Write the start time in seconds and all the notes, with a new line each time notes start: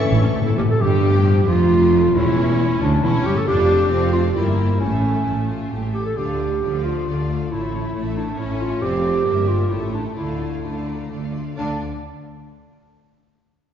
Already playing: E3 C#4 A4 C#5 E5 C#6
0.00 A2 A3
0.12 A1 A2 E4
0.20 A2 C#4
0.27 A2
0.34 A1 A2 A3
0.42 A2
0.46 A2 E4
0.57 A1 A2 C#4 G4
0.66 A2
0.70 A4
0.80 G1 G2 D3 G3 G4
1.26 F3
1.47 F1 F2 F4
1.71 A3
2.15 E1 E2 A2 C#4 E4
2.81 D2 D4
3.02 E1 E2 C#4 E4
3.24 G1 G2 G4
3.35 A2 A4
3.46 F1 F2 D4 F4 G4 D5 A5
3.58 A4 F5
3.68 F4 D5 A5
3.79 A4 F5
3.89 F1 F2 C4 F4 D5 A5
4.01 A4 F5
4.12 F4 D5 A5
4.23 A4 F5
4.34 G1 G2 A#3 E4 G4 D5 G5
4.46 A#4 E5
4.56 G4 D5 G5
4.68 A#4 E5
4.78 A1 A2 A3 C#4 E4 C#5 A5
4.90 A4 E5
5.01 E4 C#5 A5
5.13 A4 E5
5.24 A1 A2 E4 A5
5.37 E5
5.48 F4 A5
5.60 E5
5.70 A1 A2 G4 A5
5.83 E5
5.93 G4 A4 A5
6.05 A4 E5
6.16 D2 D3 F4 G4 D5 F5
6.27 A4 D5 F5
6.39 F4 D5 F5
6.50 A4 D5 F5
6.62 D2 D3 F3 F4 D5 F5
6.74 A4 D5 F5
6.84 F4 D5 F5
6.96 A4 D5 F5
7.07 D2 D3 A3 F4 D5 F5
7.19 A4 D5 F5
7.30 F4 D5 F5
7.41 A4 D5 F5
7.52 A1 A2 A3 E4 C#5 A5
7.63 A4 E5
7.72 E4 C#5 A5
7.84 A4 E5
7.95 A1 A2 E4 C#5 A5
8.05 A4 E5
8.17 D4 E4 C#5 A5
8.28 A4 E5
8.39 A1 A2 C#4 E4 C#5 A5
8.50 A4 E5
8.61 E4 F4 C#5 A5
8.72 A4 E5
8.81 F1 F2 C4 F4 G4 D5 A5
8.94 A4 F5
9.04 F4 D5 A5
9.15 A4 F5
9.25 G1 G2 A#3 G4 D5 G5
9.35 A#4 E5
9.46 F4 G4 D5 G5
9.57 A#4 E5
9.68 A1 A2 A3 E4 G4 C#5 A5
9.79 A4 E5
9.83 G5
9.91 D4 G4 C#5 A5
10.03 A4 E5 G5
10.15 D2 D3 A3 E4 F4 D5 A5
10.26 A4 F5
10.39 F4 D5 A5
10.50 A4 F5
10.62 D2 D3 D4 F4 D5 A5
10.74 A4 F5
10.86 F4 D5 A#5
10.98 A4 F5
11.10 D2 D3 F4 D5 A5
11.22 A4 F5
11.34 F4 D5 C6
11.46 A4 F5
11.58 D2 D3 D4 D5 F5